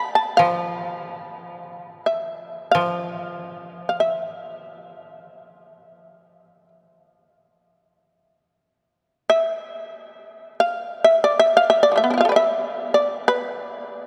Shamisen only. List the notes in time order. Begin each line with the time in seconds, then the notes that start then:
Already playing: B5
0.15 A5
0.37 F5
2.06 E5
2.71 F5
3.38 E5
3.89 F5
4.00 E5
9.30 E5
10.60 F5
11.04 E5
11.24 D5
11.39 E5
11.57 F5
11.70 E5
11.83 D5
11.92 F3 A3
11.97 E5
12.04 B3
12.10 D4 E4
12.18 F4 F5
12.25 A4
12.29 B4 D5
12.36 E5
12.94 D5
13.28 B4